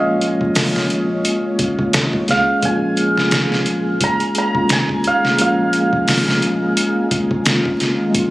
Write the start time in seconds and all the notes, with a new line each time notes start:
Already playing: A#1 G#3 A#3 C#4 F4 C#5 D#5 F5 G#5
0.21 closed hi-hat
0.41 kick
0.55 snare, open hi-hat
0.76 snare
0.90 closed hi-hat
1.25 closed hi-hat
1.59 kick, closed hi-hat
1.79 kick
1.93 D#2, snare, closed hi-hat
2.13 kick
2.26 C#2 G#3 A#3 C#4, snare, closed hi-hat
2.30 G#4 F5
2.59 G#3 A#3, kick, closed hi-hat
2.63 A#1 G#3 C#4 G#4 G#5
2.68 F4
2.97 closed hi-hat
3.18 snare
3.31 snare, closed hi-hat
3.52 snare
3.66 closed hi-hat
4.01 A#5, kick, closed hi-hat
4.20 closed hi-hat
4.35 A#5, closed hi-hat
4.53 G#3 A#3 C#4, kick
4.57 F4
4.69 G#5, snare, closed hi-hat
4.89 kick
5.04 D#2 F5, closed hi-hat
5.25 snare
5.37 A#1 G#3 A#3 C#4, closed hi-hat
5.41 F4 F5
5.73 closed hi-hat
5.93 kick
6.08 snare, open hi-hat
6.28 snare
6.42 closed hi-hat
6.77 closed hi-hat
7.11 kick, closed hi-hat
7.31 kick
7.45 G#3 A#3 C#4, snare, closed hi-hat
7.49 F4
7.65 kick
7.80 G#1, snare, closed hi-hat
8.11 G#3 A#3, kick, closed hi-hat
8.15 A#1 C#4
8.20 F4